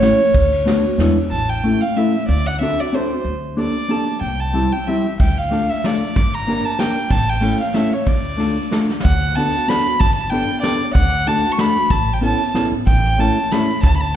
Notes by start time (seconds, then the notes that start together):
Already playing: A1 C#5
0.01 A3 C#4 E4 G4, snare, ride
0.34 D2, kick, ride
0.52 ride
0.66 A3 B3 D4 F#4, snare, ride
0.98 E2 G#3 B3 D4 E4, snare, ride
1.31 A1 A5
1.49 G5
1.64 A3 C#4 E4 A4
1.81 F5
1.96 A3 C#4 E4 A4 E5
2.29 D2 D5
2.46 F#5
2.61 C4 D4 F#4 A4 E5
2.80 D5
2.92 C4 D4 F#4 A4 C5
3.25 D2
3.57 A#3 D4 G4 A4 D5
3.89 A#3 D4 G4 A4 A5
4.21 C2 G5
4.40 A5
4.53 G3 C4 E4 G4
4.72 G5
4.87 G3 C4 E4 G4 E5
5.20 D2 G5, kick, ride
5.38 F5
5.51 A3 D4 F4 A4, ride
5.70 E5
5.84 A3 D4 F4 A4 D5, snare, ride
6.16 G1 D6, kick, ride
6.34 A#5
6.47 A#3 D4 G4 A#4, ride
6.64 A5
6.79 A#3 D4 G4 A#4 G5, snare, ride
7.10 A1 A5, kick, ride
7.29 G5
7.41 A3 C#4 E4 A4, ride
7.60 F5
7.74 A3 C#4 E4 A4 E5, snare, ride
7.93 C#5
8.06 D2 D5, kick, ride
8.37 A3 D4 F4 A4, ride
8.71 A3 D4 F4 A4, snare, ride
8.90 snare
9.00 F#5, snare
9.05 D2, kick, closed hi-hat
9.35 B3 D4 F#4 A4 A5, closed hi-hat
9.68 B3 D4 F#4 A4 B5, snare, closed hi-hat
9.99 G1 A5, kick, closed hi-hat
10.15 A5
10.30 B3 D4 G4 A4 G5, closed hi-hat
10.62 B3 D4 G4 A4 D5, snare, closed hi-hat
10.94 D2 F#5, kick, closed hi-hat
11.27 A3 D4 F#4 A4 A5, closed hi-hat
11.52 C#6
11.58 A3 D4 F#4 A4 B5, snare, closed hi-hat
11.90 A1 A5, kick, closed hi-hat
12.13 G5
12.21 B3 C#4 E4 A4 A5, closed hi-hat
12.54 B1 B3 C#4 E4 A4, snare, closed hi-hat
12.72 A1
12.87 A1 G5, kick, closed hi-hat
13.18 A3 C#4 E4 A4 A5, closed hi-hat
13.52 A3 C#4 E4 A4 B5, snare, closed hi-hat
13.83 D2 A5, kick, closed hi-hat
13.96 B5
14.01 A5